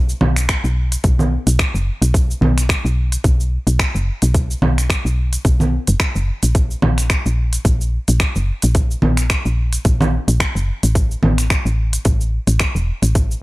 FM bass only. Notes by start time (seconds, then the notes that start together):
Already playing: B1
0.22 B1
0.64 B1
1.04 B1
1.47 B1
1.74 F#1
2.02 B1
2.41 B1
2.85 B1
3.24 B1
3.67 B1
3.95 F#1
4.22 B1
4.62 B1
5.05 B1
5.45 B1
5.88 F#1
6.16 F#1
6.43 A#1
6.83 A#1
7.26 A#1
7.65 A#1
8.08 A#1
8.36 F#1
8.64 A#1
9.03 A#1
9.46 A#1
9.85 A#1
10.28 A#1
10.55 F#1
10.83 A1
11.23 A1
11.65 A1
12.05 A1
12.47 A1
12.75 E1
13.02 A1